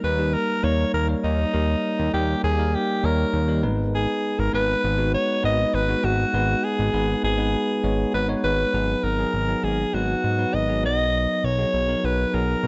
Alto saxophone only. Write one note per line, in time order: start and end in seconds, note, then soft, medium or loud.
0.04 0.35 B4 medium
0.34 0.65 A#4 medium
0.64 0.93 C#5 medium
0.94 1.07 A#4 medium
1.24 2.10 D#4 medium
2.13 2.42 G4 medium
2.44 2.76 G#4 medium
2.75 3.06 G4 medium
3.05 3.64 A#4 medium
3.95 4.40 G#4 medium
4.39 4.54 A#4 medium
4.54 5.10 B4 loud
5.14 5.42 C#5 loud
5.45 5.76 D#5 loud
5.74 6.06 B4 loud
6.04 6.66 F#4 medium
6.64 7.24 G#4 loud
7.24 8.10 G#4 medium
8.14 8.28 B4 medium
8.44 9.05 B4 loud
9.04 9.65 A#4 loud
9.64 9.95 G#4 medium
9.94 10.56 F#4 medium
10.54 10.84 D#5 medium
10.85 11.46 D#5 loud
11.45 12.06 C#5 loud
12.05 12.36 B4 medium
12.35 12.67 A#4 medium